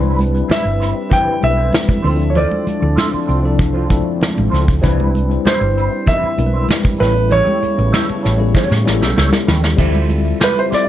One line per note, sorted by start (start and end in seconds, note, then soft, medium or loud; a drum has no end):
0.00 0.41 C2 medium
0.00 0.17 G3 medium
0.00 0.17 G3 loud
0.00 2.03 G3 medium
0.00 0.17 C4 medium
0.00 2.02 C4 medium
0.00 0.18 D4 loud
0.00 0.17 E4 medium
0.00 0.18 E4 medium
0.00 2.02 E4 medium
0.00 0.17 B4 medium
0.00 0.18 B4 loud
0.00 2.02 B4 medium
0.00 high conga medium
0.19 closed hi-hat medium
0.19 high conga medium
0.32 1.03 G3 medium
0.32 1.04 C4 medium
0.32 1.04 D4 soft
0.32 1.04 E4 medium
0.32 1.05 B4 medium
0.32 muted clean electric guitar stroke soft
0.32 closed hi-hat soft
0.48 0.71 G3 medium
0.48 0.64 C4 medium
0.48 0.64 E4 medium
0.48 0.63 B4 medium
0.48 1.09 E5 medium
0.48 muted fingered electric bass stroke soft
0.48 snare loud
0.48 closed hi-hat medium
0.48 muted conga soft
0.48 high conga medium
0.64 0.92 G1 medium
0.64 muted clean electric guitar stroke soft
0.64 muted conga soft
0.80 0.97 G3 medium
0.80 0.95 C4 medium
0.80 0.94 E4 medium
0.80 0.94 B4 medium
0.80 snare soft
0.80 closed hi-hat medium
0.95 muted clean electric guitar stroke soft
1.09 1.32 G3 medium
1.09 1.32 C4 medium
1.09 1.32 E4 medium
1.09 1.32 B4 medium
1.09 1.44 G5 loud
1.09 kick medium
1.09 closed hi-hat medium
1.09 muted conga soft
1.09 low conga medium
1.27 muted fingered electric bass stroke soft
1.41 1.70 B1 medium
1.41 2.02 G3 medium
1.41 2.02 C4 medium
1.41 2.03 D4 medium
1.41 2.03 E4 medium
1.41 1.50 A4 medium
1.41 2.32 E5 medium
1.41 muted clean electric guitar stroke soft
1.41 closed hi-hat medium
1.41 high conga soft
1.50 2.07 B4 medium
1.56 1.71 G3 soft
1.56 1.71 C4 soft
1.56 1.71 E4 soft
1.56 1.72 C5 medium
1.73 snare medium
1.73 closed hi-hat medium
1.73 high conga medium
1.87 muted clean electric guitar stroke soft
1.87 kick medium
1.87 muted conga soft
1.87 high conga medium
2.02 2.44 D2 medium
2.02 2.66 F3 medium
2.02 4.81 F3 medium
2.02 4.80 A3 medium
2.02 2.25 C4 medium
2.02 2.66 C4 medium
2.02 6.96 C4 medium
2.02 2.67 D4 medium
2.02 4.81 D4 medium
2.02 2.67 E4 medium
2.02 2.18 F4 medium
2.02 2.18 A4 medium
2.02 2.67 A4 medium
2.02 2.17 C5 medium
2.02 open hi-hat medium
2.19 muted clean electric guitar stroke soft
2.19 closed hi-hat soft
2.30 2.36 C#5 medium
2.34 2.64 C4 medium
2.34 2.64 F4 medium
2.34 2.64 A4 medium
2.34 2.64 C5 medium
2.34 3.56 D5 medium
2.34 closed hi-hat medium
2.34 low conga medium
2.51 muted conga soft
2.51 high conga medium
2.67 muted fingered electric bass stroke soft
2.67 closed hi-hat medium
2.67 high conga medium
2.80 2.95 D2 medium
2.80 3.21 F3 medium
2.80 3.22 C4 medium
2.80 3.22 D4 medium
2.80 3.22 E4 medium
2.80 3.23 A4 medium
2.80 muted clean electric guitar stroke soft
2.96 3.18 C4 medium
2.96 3.11 F4 medium
2.96 3.11 A4 medium
2.96 3.10 C5 medium
2.96 snare loud
2.96 closed hi-hat medium
2.96 high conga medium
3.12 muted clean electric guitar stroke soft
3.12 muted fingered electric bass stroke soft
3.12 muted conga soft
3.27 4.02 C2 medium
3.27 3.44 C4 medium
3.27 3.42 F4 medium
3.27 3.42 A4 medium
3.27 3.42 C5 medium
3.27 closed hi-hat medium
3.42 3.73 F3 medium
3.42 3.74 C4 medium
3.42 3.74 D4 medium
3.42 3.74 E4 medium
3.42 3.75 A4 medium
3.42 muted clean electric guitar stroke soft
3.58 muted clean electric guitar stroke soft
3.58 kick loud
3.58 closed hi-hat medium
3.58 muted conga soft
3.58 low conga medium
3.73 3.88 C4 medium
3.73 3.88 F4 medium
3.73 3.88 A4 medium
3.73 3.88 C5 medium
3.89 4.50 F3 medium
3.89 4.50 C4 medium
3.89 4.50 D4 medium
3.89 4.51 E4 medium
3.89 4.51 A4 medium
3.89 muted clean electric guitar stroke soft
3.89 kick medium
3.89 closed hi-hat medium
3.89 high conga soft
4.04 muted clean electric guitar stroke soft
4.20 muted clean electric guitar stroke soft
4.20 snare medium
4.20 closed hi-hat medium
4.20 muted conga soft
4.20 high conga medium
4.35 4.50 A1 medium
4.35 muted clean electric guitar stroke soft
4.35 muted conga soft
4.35 high conga medium
4.50 4.79 C#2 medium
4.50 4.73 C4 medium
4.50 4.65 F4 medium
4.50 4.65 A4 medium
4.50 4.65 C5 medium
4.50 snare soft
4.50 open hi-hat medium
4.66 muted clean electric guitar stroke soft
4.66 kick medium
4.81 5.36 C2 medium
4.81 5.11 G3 medium
4.81 5.12 G3 loud
4.81 9.62 G3 medium
4.81 5.11 C4 medium
4.81 5.13 C4 medium
4.81 5.13 D4 medium
4.81 5.11 E4 medium
4.81 9.62 E4 medium
4.81 5.13 E4 medium
4.81 5.11 B4 medium
4.81 5.14 B4 loud
4.81 kick loud
4.81 closed hi-hat medium
4.81 muted conga soft
4.81 low conga medium
5.00 muted conga soft
5.00 high conga medium
5.15 closed hi-hat medium
5.15 high conga medium
5.28 5.99 G3 medium
5.28 5.99 C4 medium
5.28 6.00 D4 medium
5.28 6.00 E4 medium
5.28 6.00 C5 medium
5.28 muted clean electric guitar stroke soft
5.28 closed hi-hat soft
5.45 5.66 G3 medium
5.45 5.60 C4 medium
5.45 5.60 E4 medium
5.45 5.60 B4 medium
5.45 6.10 C5 medium
5.45 muted fingered electric bass stroke soft
5.45 snare loud
5.45 closed hi-hat medium
5.45 high conga medium
5.61 5.87 G1 medium
5.61 muted clean electric guitar stroke soft
5.61 muted conga soft
5.77 5.93 G3 medium
5.77 5.91 C4 medium
5.77 5.91 E4 medium
5.77 5.91 B4 medium
5.77 closed hi-hat medium
5.92 muted clean electric guitar stroke soft
6.06 6.29 G3 medium
6.06 6.29 C4 medium
6.06 6.29 E4 medium
6.06 6.29 B4 medium
6.06 6.65 E5 loud
6.06 kick medium
6.06 closed hi-hat medium
6.06 muted conga soft
6.06 low conga medium
6.23 muted fingered electric bass stroke soft
6.37 6.65 B1 medium
6.37 6.97 G3 medium
6.37 6.98 C4 medium
6.37 6.98 D4 medium
6.37 6.98 E4 medium
6.37 6.45 A#4 medium
6.37 muted clean electric guitar stroke soft
6.37 closed hi-hat medium
6.37 high conga medium
6.46 7.02 B4 medium
6.53 6.67 G3 soft
6.53 6.67 C4 soft
6.53 6.68 E4 soft
6.53 6.68 C5 medium
6.68 muted clean electric guitar stroke soft
6.68 snare medium
6.68 closed hi-hat medium
6.68 muted conga soft
6.68 high conga medium
6.84 muted clean electric guitar stroke soft
6.84 kick medium
6.84 muted conga soft
6.84 high conga medium
6.98 7.40 A1 medium
6.98 9.62 C#3 medium
6.98 7.61 G3 medium
6.98 7.21 A3 medium
6.98 9.62 A3 medium
6.98 7.62 B3 medium
6.98 7.62 C#4 medium
6.98 7.13 E4 medium
6.98 7.62 E4 medium
6.98 7.13 G4 medium
6.98 7.63 A4 medium
6.98 7.29 B4 medium
6.98 7.13 C#5 medium
6.98 open hi-hat medium
7.02 snare soft
7.14 muted clean electric guitar stroke soft
7.14 closed hi-hat soft
7.29 7.59 A3 medium
7.29 7.59 E4 medium
7.29 7.59 G4 medium
7.29 7.59 C#5 medium
7.29 9.13 C#5 medium
7.29 closed hi-hat medium
7.29 muted conga soft
7.29 low conga medium
7.47 high conga medium
7.62 muted fingered electric bass stroke soft
7.62 closed hi-hat medium
7.62 high conga medium
7.76 7.91 A1 medium
7.76 8.16 G3 medium
7.76 8.17 B3 medium
7.76 8.17 C#4 medium
7.76 8.18 E4 medium
7.76 8.18 B4 medium
7.76 muted clean electric guitar stroke soft
7.76 closed hi-hat medium
7.92 8.14 A3 medium
7.92 8.08 E4 medium
7.92 8.07 G4 medium
7.92 8.07 C#5 medium
7.92 snare loud
7.92 closed hi-hat medium
7.92 muted conga soft
7.92 high conga medium
8.08 muted clean electric guitar stroke soft
8.08 muted fingered electric bass stroke soft
8.08 muted conga soft
8.23 8.51 A1 medium
8.23 8.40 A3 medium
8.23 8.39 E4 medium
8.23 8.38 G4 medium
8.23 8.38 C#5 medium
8.23 snare soft
8.23 closed hi-hat medium
8.37 8.68 G3 medium
8.37 8.69 B3 medium
8.37 8.69 C#4 medium
8.37 8.69 E4 medium
8.37 8.70 A4 medium
8.37 muted clean electric guitar stroke soft
8.54 8.76 A3 medium
8.54 8.76 E4 medium
8.54 8.76 G4 medium
8.54 8.76 C#5 medium
8.54 kick loud
8.54 snare medium
8.54 muted conga soft
8.54 low conga medium
8.71 8.84 A2 loud
8.71 snare soft
8.71 muted conga soft
8.85 9.03 A1 medium
8.85 9.45 G3 medium
8.85 9.46 B3 medium
8.85 9.46 C#4 medium
8.85 9.46 E4 medium
8.85 8.93 G4 medium
8.85 muted clean electric guitar stroke soft
8.85 snare medium
8.85 high conga soft
8.94 9.50 A4 loud
9.01 9.15 B1 medium
9.01 9.15 A3 soft
9.01 9.15 E4 medium
9.01 9.15 G4 medium
9.01 9.17 E5 medium
9.01 snare medium
9.16 9.31 C#2 medium
9.16 9.38 A3 medium
9.16 9.31 E4 medium
9.16 9.30 G4 medium
9.16 9.30 C#5 medium
9.16 snare medium
9.16 high conga medium
9.31 muted clean electric guitar stroke medium
9.31 snare medium
9.31 muted conga soft
9.31 high conga medium
9.47 9.75 D#2 medium
9.47 9.64 A3 medium
9.47 9.62 E4 soft
9.47 9.62 G4 medium
9.47 9.61 C#5 medium
9.47 snare medium
9.47 low conga medium
9.63 muted clean electric guitar stroke soft
9.63 snare medium
9.76 10.32 D2 medium
9.76 10.89 F3 medium
9.76 10.38 G3 loud
9.76 10.89 G3 medium
9.76 10.38 C4 medium
9.76 10.89 C4 medium
9.76 10.38 E4 medium
9.76 10.07 F4 medium
9.76 10.39 F4 medium
9.76 10.07 G4 medium
9.76 10.39 A4 loud
9.76 10.07 C5 medium
9.76 10.08 E5 medium
9.76 10.89 E5 medium
9.76 kick loud
9.76 crash medium
9.76 muted conga soft
9.76 low conga medium
9.94 closed hi-hat soft
9.94 muted conga soft
9.94 high conga medium
10.10 closed hi-hat medium
10.10 high conga medium
10.24 muted clean electric guitar stroke soft
10.24 closed hi-hat soft
10.40 10.62 F4 medium
10.40 10.54 G4 medium
10.40 10.58 B4 medium
10.40 10.54 C5 medium
10.40 10.53 E5 medium
10.40 snare loud
10.40 high conga medium
10.55 muted clean electric guitar stroke soft
10.55 closed hi-hat medium
10.55 muted conga soft
10.59 10.64 C5 medium
10.69 10.89 G3 medium
10.69 10.89 C4 medium
10.69 10.89 E4 medium
10.69 10.88 F4 soft
10.69 10.89 F4 medium
10.69 10.85 G4 medium
10.69 10.89 A4 medium
10.69 10.85 C5 medium
10.69 10.84 E5 medium
10.69 muted fingered electric bass stroke soft
10.69 snare soft
10.69 closed hi-hat medium
10.74 10.89 D5 medium
10.85 muted clean electric guitar stroke soft